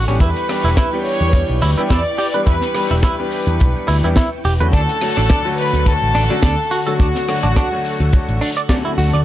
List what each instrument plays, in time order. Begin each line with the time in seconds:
Already playing: string machine D3 A4 F#5 C#6
0.08 picked electric bass A1, grand piano E3 G3 B3 D4 G4, clean electric guitar C#4, cross-stick, closed hi-hat, maracas
0.20 picked electric bass E2, clean electric guitar E4, string machine E4 B4 G5, violin section B4, kick, closed hi-hat, maracas
0.36 closed hi-hat, maracas
0.49 grand piano E3 G3 B3 D4 G4, cross-stick, open hi-hat, maracas
0.64 picked electric bass E1, clean electric guitar E4, maracas
0.77 clean electric guitar E4, kick, cross-stick, snare, closed hi-hat, maracas
0.93 grand piano E3 G3 B3 D4 G4, maracas
1.05 violin section C#5, open hi-hat, maracas
1.20 picked electric bass E2, closed hi-hat, maracas
1.33 grand piano E3 G3 B3 D4 G4, kick, closed hi-hat, maracas
1.49 picked electric bass B1, maracas
1.61 picked electric bass D2, clean electric guitar E4, open hi-hat, maracas
1.76 grand piano E3 G3 B3 D4 G4, clean electric guitar E4, muted picked electric bass stroke, closed hi-hat, maracas
1.90 picked electric bass E2, clean electric guitar E4, violin section D5, kick, snare, closed hi-hat, maracas
2.06 maracas
2.18 clean electric guitar G4, open hi-hat, maracas
2.34 grand piano E3 G3 B3 D4 G4, clean electric guitar B4, closed hi-hat, maracas
2.46 picked electric bass E2, clean electric guitar E4, violin section B4, kick, closed hi-hat, maracas
2.61 snare, closed hi-hat, maracas
2.75 grand piano E3 G3 B3 D4 G4, cross-stick, open hi-hat, maracas
2.91 picked electric bass E1, clean electric guitar E4, maracas
3.03 clean electric guitar E4, violin section B4, kick, cross-stick, snare, closed hi-hat, maracas
3.19 grand piano E3 G3 B3 D4 G4, maracas
3.31 open hi-hat, maracas
3.46 picked electric bass E2, closed hi-hat, maracas
3.60 picked electric bass B1, grand piano E3 G3 B3 D4 G4, kick, closed hi-hat, maracas
3.76 maracas
3.88 picked electric bass D2, clean electric guitar E4, open hi-hat, maracas
4.03 picked electric bass E2, grand piano E3 G3 B3 D4 G4, clean electric guitar E4, closed hi-hat, maracas
4.16 clean electric guitar E4, kick, snare, closed hi-hat, maracas
4.33 maracas
4.45 picked electric bass E1, clean electric guitar G4, open hi-hat, maracas
4.60 picked electric bass E2, grand piano D3 F#3 A3 C#4 F#4, clean electric guitar B4, closed hi-hat, maracas
4.73 picked electric bass D2, string machine D3 A4 F#5 C#6, clean electric guitar D4, violin section A4, kick, closed hi-hat, maracas
4.89 closed hi-hat, maracas
5.01 grand piano D3 F#3 A3 F#4 C#5, cross-stick, open hi-hat, maracas
5.17 picked electric bass A1, clean electric guitar D4, maracas
5.29 clean electric guitar D4, kick, cross-stick, snare, closed hi-hat, maracas
5.45 grand piano D3 F#3 A3 F#4 C#5, maracas
5.58 violin section B4, open hi-hat, maracas
5.73 picked electric bass D2, closed hi-hat, maracas
5.86 grand piano D3 F#3 A3 F#4 C#5, violin section A4, kick, closed hi-hat, maracas
6.02 picked electric bass A1, maracas
6.15 picked electric bass A1, clean electric guitar D4, open hi-hat, maracas
6.30 grand piano D3 F#3 A3 C#4 F#4, clean electric guitar D4, muted picked electric bass stroke, closed hi-hat, maracas
6.43 picked electric bass D2, clean electric guitar D4, kick, snare, closed hi-hat, maracas
6.59 maracas
6.71 clean electric guitar F#4, violin section F#4, open hi-hat, maracas
6.87 grand piano D3 F#3 A3 F#4 C#5, clean electric guitar A4, closed hi-hat, maracas
6.99 picked electric bass D2, clean electric guitar D4, kick, closed hi-hat, maracas
7.15 snare, closed hi-hat, maracas
7.28 grand piano D3 F#3 A3 F#4 C#5, cross-stick, open hi-hat, maracas
7.43 picked electric bass A1, clean electric guitar D4, closed hi-hat, maracas
7.56 clean electric guitar D4, kick, cross-stick, snare, closed hi-hat, maracas
7.72 grand piano D3 F#3 A3 F#4 C#5, maracas
7.85 open hi-hat, maracas
8.00 picked electric bass D2, closed hi-hat, maracas
8.13 grand piano D3 F#3 A3 F#4 C#5, kick, closed hi-hat, maracas
8.29 picked electric bass A1, closed hi-hat, maracas
8.41 clean electric guitar D4, open hi-hat, maracas
8.57 clean electric guitar D5, closed hi-hat, maracas
8.69 grand piano D3 F#3 A3 C#4 A4, clean electric guitar D5, kick, snare, closed hi-hat, maracas
8.84 grand piano D3 F#3 A3 F#4, clean electric guitar E4, maracas
8.98 picked electric bass D2, clean electric guitar F#4, open hi-hat, maracas
9.13 picked electric bass D2, clean electric guitar D5, cross-stick, closed hi-hat, maracas